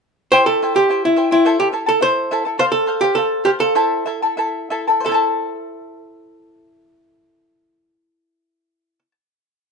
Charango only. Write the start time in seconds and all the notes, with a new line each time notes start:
0.32 E4 G4 C5 E5 G5
0.62 E4 C5 E5 G5
0.75 E4 C5 G5
0.89 E4 C5 E5 G5
1.16 E4 C5 E5 G5
1.31 E4 C5 G5
1.45 E4 A4 C5 E5 A5
1.72 E4 A4 E5 A5
1.86 E4 A4 A5
2.01 E4 A4 E5 A5
2.31 E4 A4 E5 A5
2.45 E4 A4 A5
2.59 A4 C5 F5
2.86 A4 C5 F5
3.02 C5 F5
3.15 A4 C5 F5
3.45 A4 C5 F5
3.60 C5 F5
3.75 E4 A4 C5 E5 A5
4.06 E4 A4 E5 A5
4.23 E4 A4 A5
4.37 E4 A4 E5 A5
4.70 E4 A4 E5 A5
4.88 E4 A4 A5
5.00 C5
5.05 E5
5.09 E4 A4
5.14 A5